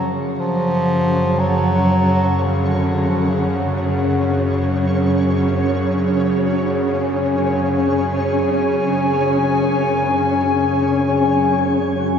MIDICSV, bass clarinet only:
0, 0, Header, 1, 2, 480
1, 0, Start_track
1, 0, Tempo, 500000
1, 11701, End_track
2, 0, Start_track
2, 0, Title_t, "Bass clarinet"
2, 0, Program_c, 0, 71
2, 0, Note_on_c, 0, 54, 85
2, 108, Note_off_c, 0, 54, 0
2, 377, Note_on_c, 0, 53, 92
2, 1338, Note_on_c, 0, 54, 88
2, 1352, Note_off_c, 0, 53, 0
2, 2333, Note_on_c, 0, 49, 70
2, 2348, Note_off_c, 0, 54, 0
2, 2570, Note_on_c, 0, 50, 68
2, 2584, Note_off_c, 0, 49, 0
2, 2966, Note_on_c, 0, 53, 61
2, 2981, Note_off_c, 0, 50, 0
2, 3069, Note_on_c, 0, 50, 55
2, 3083, Note_off_c, 0, 53, 0
2, 3166, Note_on_c, 0, 49, 60
2, 3180, Note_off_c, 0, 50, 0
2, 3249, Note_on_c, 0, 50, 60
2, 3264, Note_off_c, 0, 49, 0
2, 3323, Note_off_c, 0, 50, 0
2, 11701, End_track
0, 0, End_of_file